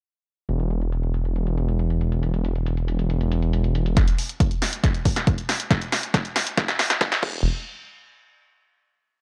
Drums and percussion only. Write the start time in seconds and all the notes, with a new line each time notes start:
0.49 closed hi-hat
0.60 closed hi-hat
0.71 closed hi-hat
0.81 closed hi-hat
0.92 closed hi-hat
1.03 closed hi-hat
1.14 closed hi-hat
1.25 closed hi-hat
1.36 closed hi-hat
1.47 closed hi-hat
1.58 closed hi-hat
1.68 closed hi-hat
1.79 closed hi-hat
1.90 closed hi-hat
2.01 closed hi-hat
2.12 closed hi-hat
2.23 closed hi-hat
2.34 closed hi-hat
2.45 closed hi-hat
2.55 closed hi-hat
2.66 closed hi-hat
2.77 closed hi-hat
2.88 closed hi-hat
2.99 closed hi-hat
3.10 closed hi-hat
3.21 closed hi-hat
3.32 closed hi-hat
3.42 closed hi-hat
3.53 closed hi-hat
3.64 closed hi-hat
3.75 closed hi-hat
3.86 closed hi-hat
3.97 kick, snare, closed hi-hat
4.08 closed hi-hat
4.18 open hi-hat
4.29 closed hi-hat
4.40 kick, closed hi-hat
4.51 closed hi-hat
4.62 snare, open hi-hat
4.73 closed hi-hat
4.84 kick, snare, closed hi-hat
4.95 closed hi-hat
5.05 kick, open hi-hat
5.16 snare, closed hi-hat
5.27 kick, closed hi-hat
5.38 closed hi-hat
5.49 snare, open hi-hat
5.60 closed hi-hat
5.71 kick, snare, closed hi-hat
5.82 closed hi-hat
5.92 snare, open hi-hat
6.03 closed hi-hat
6.14 kick, snare, closed hi-hat
6.25 closed hi-hat
6.36 snare, open hi-hat
6.47 closed hi-hat
6.58 kick, snare, closed hi-hat
6.68 snare, closed hi-hat
6.79 snare, open hi-hat
6.90 snare, closed hi-hat
7.01 kick, snare, closed hi-hat
7.12 snare, closed hi-hat
7.23 kick, crash